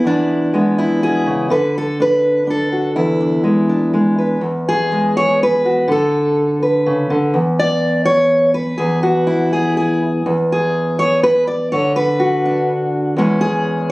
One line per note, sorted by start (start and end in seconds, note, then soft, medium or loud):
0.00 0.55 E4 medium
0.00 0.31 G#4 medium
0.04 1.50 E2 medium
0.04 1.27 D4 medium
0.54 1.47 G#3 medium
0.54 1.02 B3 soft
0.78 1.51 E4 medium
1.03 1.26 B2 medium
1.03 1.51 G#4 medium
1.26 1.50 C#3 medium
1.50 3.43 D3 medium
1.50 1.75 B4 medium
1.78 2.00 A4 medium
2.00 2.46 D4 medium
2.00 2.48 B4 medium
2.47 2.93 D4 medium
2.47 2.96 A4 medium
2.73 2.93 F#4 soft
2.96 4.40 E2 medium
2.96 4.18 E4 medium
3.21 3.68 D4 soft
3.44 3.92 G#3 medium
3.69 4.40 D4 soft
3.93 4.39 G#3 medium
4.18 4.40 B4 soft
4.41 5.88 E2 medium
4.69 5.65 G#4 medium
4.92 5.86 G#3 soft
5.17 5.41 C#5 medium
5.43 5.90 B4 medium
5.65 5.86 F#4 soft
5.88 7.09 D3 medium
5.88 6.62 A4 medium
6.63 7.32 B4 soft
6.86 7.10 C#3 medium
7.10 7.34 D3 medium
7.34 8.79 E2 medium
7.59 8.05 D5 loud
8.05 8.54 C#5 loud
8.54 9.26 B4 medium
8.78 10.25 E2 medium
8.78 9.02 G#4 medium
9.03 9.52 F#4 medium
9.27 10.01 E4 medium
9.53 9.76 G#4 medium
9.77 10.26 G#4 medium
10.26 11.72 E2 medium
10.52 11.49 G#4 medium
10.99 11.23 C#5 medium
11.23 11.47 B4 medium
11.47 11.72 D5 medium
11.72 13.18 D3 medium
11.72 11.96 C#5 medium
11.96 12.69 B4 loud
12.20 13.17 F#4 medium
12.45 13.15 D4 soft
13.17 13.92 E2 medium
13.17 13.92 G#3 soft
13.17 13.92 C#4 medium
13.17 13.41 E4 medium
13.41 13.92 G#4 loud